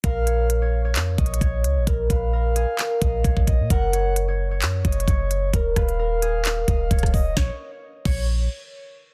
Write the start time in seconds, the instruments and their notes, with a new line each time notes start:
0.04 808-style bass A#1, harp A#4, soft synth lead F5, kick, closed hi-hat
0.27 harp C#5, closed hi-hat
0.50 closed hi-hat
0.62 harp C#5
0.85 harp C#5
0.95 808-style bass F2, clap, closed hi-hat
1.18 808-style bass A#1, soft synth lead C#5, harp D#5, kick, closed hi-hat
1.26 closed hi-hat
1.34 closed hi-hat
1.41 808-style bass A#1, harp C#5, kick, closed hi-hat
1.64 808-style bass C#2, closed hi-hat
1.76 808-style bass A#1
1.87 808-style bass A#1, harp A#4, kick, closed hi-hat
2.10 808-style bass A#1, harp B4, soft synth lead F5, kick, closed hi-hat
2.33 harp A#4
2.56 harp G#4, closed hi-hat
2.78 harp A#4, clap, closed hi-hat
3.02 808-style bass A#1, harp D#5, kick, closed hi-hat
3.24 808-style bass A#1, harp C#5, kick, closed hi-hat
3.37 kick
3.47 soft synth lead D#5, kick, closed hi-hat
3.60 808-style bass A#2
3.70 808-style bass F#1, harp A#4, soft synth lead F#5, kick, closed hi-hat
3.93 harp C#5, closed hi-hat
4.16 closed hi-hat
4.28 harp C#5
4.51 harp C#5
4.62 808-style bass F#2, clap, closed hi-hat
4.85 808-style bass F#1, soft synth lead C#5, harp D#5, kick, closed hi-hat
4.92 closed hi-hat
5.00 closed hi-hat
5.08 808-style bass F#1, harp C#5, kick, closed hi-hat
5.31 closed hi-hat
5.54 808-style bass D#1, harp A#4, kick, closed hi-hat
5.76 808-style bass D#1, harp B4, soft synth lead F5, kick, cross-stick, closed hi-hat
5.89 closed hi-hat
5.99 harp A#4
6.22 harp G#4, closed hi-hat
6.45 harp A#4, clap, closed hi-hat
6.68 808-style bass D#1, harp D#5, kick, closed hi-hat
6.91 808-style bass D#1, harp C#5, kick, closed hi-hat
6.99 closed hi-hat
7.03 kick, cross-stick, closed hi-hat
7.14 soft synth lead D#5, kick, open hi-hat
7.37 808-style bass A#1, harp C#5, soft synth lead C#5, kick, snare
8.05 808-style bass A#1, harp C#5, soft synth lead C#5, kick, crash